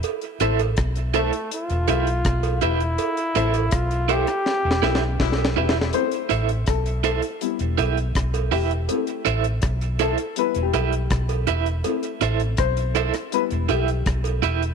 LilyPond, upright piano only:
<<
  \new Staff \with { instrumentName = "Upright piano" } { \time 4/4 \key a \minor \tempo 4 = 81 r8 <e' a' c'' e''>16 r8. <e' a' c'' e''>16 r8 <b' e''>16 <e' g' b' e''>16 r8. <e' g' b' e''>16 r16 | r8 <e' a' c'' e''>16 r8. <e' a' c'' e''>16 r8 <b' e''>16 <e' g' b' e''>16 r8. <e' g' b' e''>16 r16 | c''4 a'8 a'8 r4. g'8~ | g'4. a'8 \tuplet 3/2 { b'8 g'4~ } g'4 |
r4 c''4 b'8 g'8 r4 | }
  \new Staff \with { instrumentName = "Upright piano" } { \time 4/4 \key a \minor r1 | r1 | <a c' e'>8 r4. <g b e'>4. r8 | <a c' e'>8 r4. <g b e'>4. r8 |
<a c' e'>2 <g b e'>4. r8 | }
>>